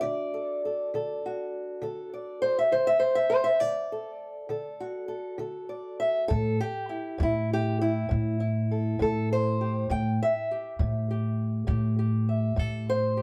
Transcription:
Already playing: D4 F#4
0.01 D3 D5
0.34 A4
0.65 A4
0.94 D3 A4
1.26 F#4
1.82 D3 A4
2.14 D5
2.42 C5
2.59 E5
2.72 D3 C5
2.87 E5
3.00 C5
3.15 E5
3.30 C5
3.44 E5
3.60 D3 D5
3.92 A4
4.49 D3 A4
4.80 F#4
5.08 A4
5.38 D3 A4
5.69 D5
6.00 E5
6.28 A2 A4
6.61 G4
6.89 E4
7.18 A2
7.23 E4
7.53 G4
7.81 E4
8.09 A2
8.40 E4
8.71 A4
8.99 A2 A4
9.33 C5
9.61 G4
9.90 A2 G5
10.23 E5
10.51 G4
10.79 A2
11.11 G4
11.67 A2 G4
11.99 G4
12.29 E5
12.56 A2 A4
12.90 C5
13.17 G4

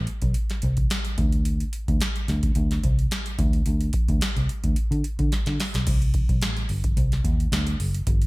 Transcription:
0.07 closed hi-hat
0.22 B1, kick, closed hi-hat
0.34 closed hi-hat
0.50 snare, closed hi-hat
0.62 C2, closed hi-hat
0.77 kick, closed hi-hat
0.90 snare, closed hi-hat
1.05 closed hi-hat
1.18 D2, kick, closed hi-hat
1.32 closed hi-hat
1.45 closed hi-hat
1.60 closed hi-hat
1.73 closed hi-hat
1.88 D2, kick, closed hi-hat
2.01 snare, closed hi-hat
2.16 closed hi-hat
2.28 D2, snare, closed hi-hat
2.43 kick, closed hi-hat
2.55 D2, closed hi-hat
2.71 snare, closed hi-hat
2.83 C2, kick, closed hi-hat
2.99 closed hi-hat
3.11 snare, closed hi-hat
3.26 closed hi-hat
3.39 D2, kick, closed hi-hat
3.53 closed hi-hat
3.66 D2, closed hi-hat
3.81 closed hi-hat
3.93 kick, closed hi-hat
4.08 D2, kick, closed hi-hat
4.21 snare, closed hi-hat
4.37 C2, closed hi-hat
4.49 closed hi-hat
4.64 D2, kick, closed hi-hat
4.76 closed hi-hat
4.91 D3, closed hi-hat
5.04 closed hi-hat
5.19 D3, kick, closed hi-hat
5.32 snare, closed hi-hat
5.46 D3, snare, closed hi-hat
5.60 snare, open hi-hat
5.74 B1, snare, closed hi-hat
5.87 C2, kick, closed hi-hat, crash
6.02 closed hi-hat
6.14 kick, closed hi-hat
6.29 B1, kick, closed hi-hat
6.42 A1, snare, closed hi-hat
6.57 closed hi-hat
6.69 G1, open hi-hat
6.84 kick, closed hi-hat
6.97 C2, closed hi-hat
7.12 snare, closed hi-hat
7.24 D#2, kick, closed hi-hat
7.40 closed hi-hat
7.52 D2, snare, closed hi-hat
7.67 closed hi-hat
7.80 F#1, open hi-hat
7.94 closed hi-hat
8.07 G1, kick, closed hi-hat
8.22 closed hi-hat

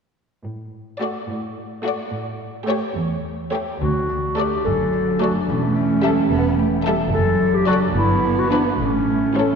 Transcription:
0.44 A2
1.00 A3 F#4 D5
1.28 A2
1.84 A3 F#4 D5
2.11 A2
2.67 A3 G4 C#5
2.94 E2
3.52 A3 G4 C#5
3.81 D2 D3 F#4
4.09 D4
4.37 A3 F#4 G4 A4 D5
4.64 F#1 F#2 F#3 A4
4.93 D4
5.20 A3 F#4 A4 D5
5.48 E1 E2 A3 C#4
5.76 E4
6.03 G3 G4 A4 E5
6.31 E1 B3 A4
6.58 A3 G4
6.85 G3 E4 A4 E5
7.13 F#1 F#2 F#3 A4
7.41 D4
7.54 G4
7.66 F#3 F#4 A4 D5
7.95 G1 G2 B3 E4
8.24 D4
8.39 F#4
8.50 E3 D4 E4 B4 D5
8.79 A1 A2 A3 C#4
9.08 A3
9.36 E3 E4 A4 C#5

